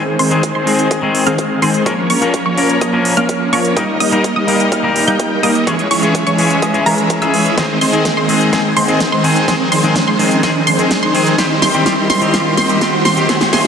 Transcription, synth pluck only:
0.00 0.17 C6 medium
0.19 0.52 C6 loud
0.55 0.88 C6 medium
0.91 1.08 D#6 medium
1.27 1.59 F6 medium
1.62 1.83 C6 loud
1.86 2.07 C#6 medium
2.10 2.43 C#6 loud
2.46 2.79 C#6 medium
2.81 2.99 D#6 medium
3.17 3.50 F6 medium
3.53 3.74 C#6 loud
3.77 3.98 D#6 medium
4.00 4.33 D#6 loud
4.36 4.69 D#6 loud
4.72 4.89 F6 medium
5.08 5.40 G6 medium
5.43 5.64 D#6 loud
5.67 5.88 C#6 medium
5.91 6.24 C#6 loud
6.27 6.60 C#6 medium
6.62 6.80 D#6 medium
6.86 7.19 A#5 loud
7.22 7.55 E6 medium
7.58 7.79 C6 medium
7.81 8.14 C6 medium
8.17 8.50 C6 medium
8.53 8.74 C6 medium
8.77 9.09 C6 loud
9.12 9.45 C6 medium
9.48 9.69 C6 medium
9.72 10.05 C6 loud
10.08 10.40 C6 medium
10.43 10.64 C6 medium
10.67 11.00 C6 loud
11.03 11.36 C6 medium
11.38 11.59 C6 medium
11.62 11.84 C6 loud
11.86 12.07 C6 medium
12.10 12.32 C6 loud
12.34 12.55 C6 medium
12.58 12.79 C6 loud
12.81 13.02 C6 medium
13.05 13.27 C6 loud
13.29 13.50 C6 medium
13.53 13.67 C6 medium

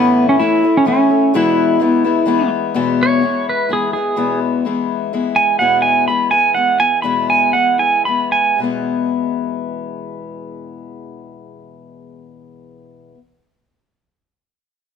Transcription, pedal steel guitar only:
0.00 0.27 B3 loud
0.29 0.41 C#4 medium
0.39 0.76 E4 medium
0.77 0.87 C#4 medium
0.88 1.36 C#4 medium
1.36 2.49 E4 medium
3.03 3.46 C#5 medium
3.49 3.71 B4 medium
3.73 3.92 G#4 medium
3.93 4.39 G#4 medium
5.36 5.58 G#5 medium
5.59 5.82 F#5 medium
5.82 6.05 G#5 medium
6.08 6.30 B5 medium
6.31 6.54 G#5 medium
6.54 6.78 F#5 medium
6.80 7.02 G#5 medium
7.02 7.27 B5 medium
7.30 7.54 G#5 medium
7.53 7.78 F#5 medium
7.79 8.05 G#5 medium
8.05 8.31 B5 medium
8.32 8.59 G#5 medium

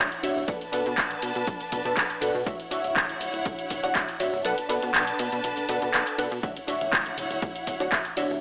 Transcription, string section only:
0.00 0.46 E4 medium
0.00 0.46 C#5 medium
0.00 0.46 F#5 medium
0.48 2.45 D4 medium
0.48 2.45 B4 medium
0.48 2.45 A5 loud
2.47 4.43 E4 medium
2.47 4.43 C#5 medium
2.47 4.43 F#5 loud
4.45 6.42 D4 medium
4.45 6.41 B4 medium
4.45 6.41 A5 loud
6.43 8.40 E4 medium
6.43 8.40 C#5 medium
6.43 8.40 F#5 medium

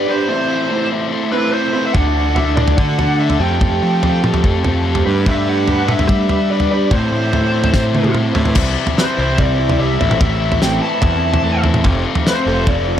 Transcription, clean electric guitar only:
0.07 0.28 D4 medium
0.07 0.28 G4 medium
0.07 0.27 B4 medium
0.27 0.68 A2 medium
0.27 0.70 E3 medium
0.27 0.70 A3 medium
0.27 0.69 C4 medium
0.27 0.71 E4 medium
0.69 1.12 A2 medium
0.69 1.12 E3 medium
0.69 0.92 A3 medium
0.69 0.91 C4 medium
0.69 0.90 E4 medium
0.91 1.33 A3 medium
0.91 1.32 C4 medium
0.91 1.31 E4 medium
1.32 1.75 A3 soft
1.32 1.73 C4 medium
1.32 1.72 E4 medium
1.73 1.94 A3 medium
1.73 1.94 C4 medium
1.73 1.94 E4 medium
1.73 1.93 B4 medium
1.94 2.34 D3 medium
1.94 2.35 E3 medium
1.94 2.36 A3 medium
1.94 2.36 D4 loud
1.94 2.36 F#4 medium
2.35 2.77 D3 medium
2.35 2.78 E3 medium
2.35 2.57 A3 medium
2.35 2.56 D4 medium
2.35 2.55 F#4 medium
2.56 2.99 A3 medium
2.56 2.98 D4 medium
2.56 2.97 F#4 medium
2.98 3.41 A3 medium
2.98 3.39 D4 medium
2.98 3.38 F#4 medium
3.40 3.59 F3 medium
3.40 3.60 A3 medium
3.40 3.60 C4 medium
3.40 3.62 G4 medium
3.60 4.01 F3 medium
3.60 4.02 A3 medium
3.60 4.02 C4 medium
3.60 4.03 G4 medium
4.02 4.43 F3 medium
4.02 4.24 A3 medium
4.02 4.22 C4 medium
4.02 4.22 G4 loud
4.22 4.65 A3 soft
4.22 4.64 C4 medium
4.22 4.62 G4 medium
4.64 5.06 A3 soft
4.64 5.05 C4 medium
4.64 5.04 G4 medium
5.05 5.24 G3 medium
5.05 5.26 A3 medium
5.05 5.25 D4 medium
5.05 5.26 G4 medium
5.05 5.27 B4 medium
5.25 5.66 G3 medium
5.25 5.67 A3 medium
5.25 5.66 D4 medium
5.25 5.67 G4 medium
5.25 5.68 B4 medium
5.67 6.09 G3 medium
5.67 6.32 A3 medium
5.67 5.88 D4 medium
5.67 5.87 G4 medium
5.67 5.87 B4 loud
5.87 6.29 D4 medium
5.87 6.29 G4 medium
5.87 6.28 B4 medium
6.29 6.71 D4 medium
6.29 6.70 G4 medium
6.29 6.69 B4 medium
6.70 6.91 D4 medium
6.70 6.91 G4 medium
6.70 6.90 B4 medium
6.90 7.30 A2 medium
6.90 7.30 E3 medium
6.90 7.30 A3 medium
6.90 7.31 C4 medium
6.90 7.32 E4 medium
7.31 7.73 A2 medium
7.31 7.74 E3 medium
7.31 7.53 A3 medium
7.31 7.53 C4 medium
7.31 7.52 E4 medium
7.53 7.95 A3 medium
7.53 7.94 C4 medium
7.53 7.94 E4 medium
7.95 8.36 A3 medium
7.95 8.35 C4 medium
7.95 8.35 E4 medium
8.35 8.56 A3 medium
8.35 8.56 C4 medium
8.35 8.55 E4 medium
8.35 8.55 B4 medium
8.56 9.59 C3 medium
8.98 9.38 C4 medium
9.18 10.82 C5 medium
9.39 10.61 C4 medium
9.59 10.00 E4 medium
9.80 10.01 G3 medium
10.00 10.20 A2 medium
10.21 11.24 A2 medium
10.62 11.02 C4 medium
10.82 11.85 B4 medium
11.03 11.63 C4 medium
11.24 11.85 E4 medium
11.44 13.00 A3 medium
11.64 12.25 C4 medium
11.85 12.87 F3 medium
12.26 12.66 C4 medium
12.46 13.00 A4 medium
12.67 13.00 C4 medium
12.87 13.00 F4 medium

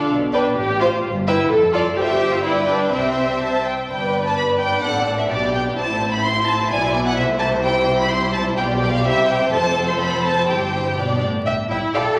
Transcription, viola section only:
0.00 0.11 D4 medium
0.34 0.55 D4 medium
0.57 0.80 G4 medium
0.81 1.04 F4 medium
1.27 1.49 E4 medium
1.51 1.74 A4 medium
1.74 1.82 F4 medium
1.97 2.00 G4 medium
2.04 2.11 F4 medium
2.10 2.32 G4 medium
2.32 2.44 F4 medium
2.43 2.67 E4 medium
2.69 2.92 D4 medium
2.93 3.64 C4 medium
3.89 4.80 B3 soft
3.89 5.74 D4 soft
4.84 5.28 C4 soft
5.30 5.74 B3 soft
5.78 6.67 C4 soft
5.78 7.60 E4 soft
6.72 7.15 B3 soft
7.19 7.62 A3 medium
7.65 9.01 G3 medium
7.65 8.54 E4 medium
8.58 9.01 F4 soft
9.05 10.94 C4 medium
9.05 9.48 E4 medium
9.51 10.44 F4 soft
10.48 10.94 E4 soft
10.97 11.24 B3 soft
10.97 11.24 D4 soft
11.71 11.93 E4 medium
11.95 12.18 A4 medium

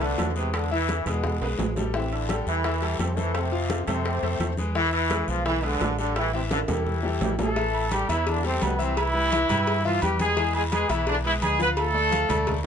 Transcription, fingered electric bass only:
0.00 0.14 C2 medium
0.18 1.00 E2 medium
1.06 1.39 E2 medium
1.41 1.58 B1 medium
1.59 2.41 A1 medium
2.47 2.96 E2 medium
2.99 3.81 F2 medium
3.87 4.20 F2 medium
4.22 4.39 F2 medium
4.39 5.22 E2 medium
5.28 5.77 B1 medium
5.81 6.63 A1 medium
6.69 7.18 E2 medium
7.21 8.03 A1 medium
8.09 8.58 E2 loud
8.62 9.44 C2 loud
9.49 9.98 G2 loud
10.02 10.84 E2 medium
10.89 11.38 B1 medium
11.42 12.24 D2 medium
12.30 12.62 D2 loud

